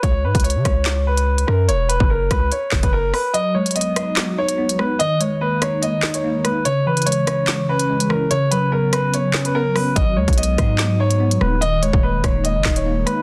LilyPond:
<<
  \new Staff \with { instrumentName = "Grand piano" } { \time 4/4 \key gis \minor \tempo 4 = 145 cis''8 b'8 cis''8 cis''4 b'4 ais'8 | cis''8 b'8 ais'8 b'8 cis''8. b'16 ais'8 b'8 | dis''8 cis''8 dis''8 r4 cis''4 b'8 | dis''8 cis''8 b'8 cis''8 dis''8. cis''8. b'8 |
cis''8 b'8 cis''8 cis''4 b'4 ais'8 | cis''8 b'8 ais'8 b'8 cis''8. b'16 ais'8 b'8 | dis''8 cis''8 dis''8 dis''4 cis''4 b'8 | dis''8 cis''8 b'8 cis''8 dis''8. cis''8. b'8 | }
  \new Staff \with { instrumentName = "Tine electric piano" } { \time 4/4 \key gis \minor r1 | r1 | fis8 gis8 b8 dis'8 fis'8 dis'8 b8 gis8 | dis8 gis8 ais8 dis'8 dis''8 dis'8 ais8 gis8 |
cis8 e8 gis8 cis'8 cis''8 cis'8 gis8 e8 | cis8 fis8 b8 cis'8 cis''8 cis'8 b8 fis8 | fis8 gis8 b8 dis'8 fis'8 dis'8 b8 gis8 | dis8 gis8 ais8 dis'8 dis''8 dis'8 ais8 gis8 | }
  \new Staff \with { instrumentName = "808-style bass" } { \clef bass \time 4/4 \key gis \minor cis,8 gis,16 cis,8 cis16 cis,2 fis,8 | e,,8. fis,,8. cis,8 r8 fis,,16 fis,,8. r8 | r1 | r1 |
r1 | r1 | gis,,8 dis,16 b,,8. gis,2 dis,,8~ | dis,,8. dis,,8 e,,16 dis,,8. fis,,16 dis,,4 r8 | }
  \new DrumStaff \with { instrumentName = "Drums" } \drummode { \time 4/4 <hh bd>8. <hh bd>32 hh32 hh32 hh16. <hh bd ss>8 <hc hh sn>8. hh16 r16 hh16 ss8 | hh8 hh16 bd16 r8 <hh bd ss>8 hh8 <hc bd sn>16 <hh bd>16 r8 <hho ss>8 | hh8. hh32 hh32 hh32 hh16. <hh ss>8 <hc hh sn>8. hh16 r16 hh16 ss8 | hh8 hh8 r8 <hh ss>8 hh8 <hc sn>16 hh16 r8 <hh ss>8 |
hh8. hh32 hh32 hh32 hh16. <hh ss>8 <hc hh sn>8. hh16 r16 hh16 ss8 | hh8 hh8 r8 <hh ss>8 hh8 <hc sn>16 hh16 r8 <hho ss>8 | <hh bd>8. <hh bd>32 hh32 hh32 hh16. <hh bd ss>8 <hc hh sn>8. hh16 r16 hh16 ss8 | hh8 hh16 bd16 r8 <hh bd ss>8 hh8 <hc bd sn>16 hh16 r8 <hh ss>8 | }
>>